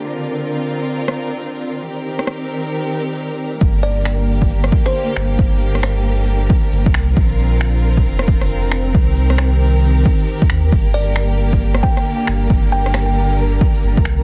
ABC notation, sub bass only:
X:1
M:4/4
L:1/16
Q:"Swing 16ths" 1/4=135
K:Gm
V:1 name="Sub bass" clef=bass
z16 | z16 | G,,,8- G,,,2 z4 G,,,2 | G,,,8- G,,,2 z2 G,,,2 C,,2 |
B,,,8 F,,,3 F,,,4- F,,, | C,,8- C,,2 z4 E,,2 | G,,,8- G,,,2 z4 G,,,2 | G,,,8- G,,,2 z2 G,,,2 C,,2 |]